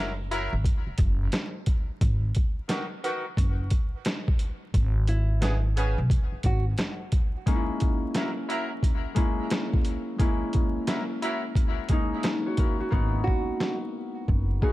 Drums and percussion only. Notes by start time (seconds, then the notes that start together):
0.31 closed hi-hat
0.65 kick, closed hi-hat
0.98 kick, closed hi-hat
1.32 snare, closed hi-hat
1.66 kick, closed hi-hat
2.01 kick, closed hi-hat
2.35 kick, closed hi-hat
2.69 snare, closed hi-hat
3.04 closed hi-hat
3.37 kick, closed hi-hat
3.70 kick, closed hi-hat
4.05 snare, closed hi-hat
4.28 kick
4.39 closed hi-hat
4.74 kick, closed hi-hat
5.07 closed hi-hat
5.42 snare, closed hi-hat
5.77 closed hi-hat
6.10 kick, closed hi-hat
6.43 kick, closed hi-hat
6.78 snare, closed hi-hat
7.12 kick, closed hi-hat
7.47 kick, closed hi-hat
7.80 kick, closed hi-hat
8.15 snare, closed hi-hat
8.50 closed hi-hat
8.83 kick, closed hi-hat
9.16 kick, closed hi-hat
9.50 snare, closed hi-hat
9.74 kick
9.85 closed hi-hat
10.19 kick, closed hi-hat
10.53 kick, closed hi-hat
10.87 snare, closed hi-hat
11.22 closed hi-hat
11.55 kick, closed hi-hat
11.89 kick, closed hi-hat
12.23 snare, closed hi-hat
12.57 kick, closed hi-hat
12.92 kick
13.28 kick
13.60 snare
14.28 kick
14.62 kick